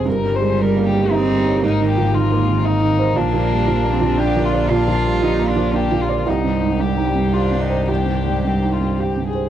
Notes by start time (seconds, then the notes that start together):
0.05 G1 G2 C#3 D#4 A#4
0.24 G3
0.34 G3 C5
0.41 G#3
0.59 G3 A#4
0.77 A#3
0.86 G4
0.93 G3
1.11 C4 D#4
1.28 G3
1.46 C#5
1.62 G#1 G#2 A#3 C4 D#4
1.80 D#3
1.88 G4
1.98 F3
2.14 D#3 G#3 F4
2.32 A#3
2.48 D#3
2.65 D#4
2.82 D#3
2.99 C5
3.16 A#1 A#2 A#3 D4 F4
3.33 F3
3.50 G3
3.68 F3
3.85 A#3
3.93 C4
4.02 F3
4.18 D4 G4
4.37 F3
4.45 F4
4.53 D5
4.70 A#2 D4 F4
4.88 F3
5.05 G3
5.23 F3 D#4
5.39 A#3
5.49 D4 F4
5.56 F3
5.74 A#3 D4 G4
5.92 F3
6.01 F4
6.09 D5
6.26 C2 D#3 D#4 G4 C5
6.43 G2
6.53 G3
6.62 G#2
6.80 G2 G4
6.97 D#4
7.15 G2
7.33 D4 F4 G4
7.52 G2
7.60 D#4
7.70 C5
7.88 C2 D4 G4
8.06 G2
8.26 G#2
8.43 G2 C4 G4
8.62 D#4
8.72 F4
8.81 G2
8.99 G4
9.17 G2
9.27 G#4
9.35 C5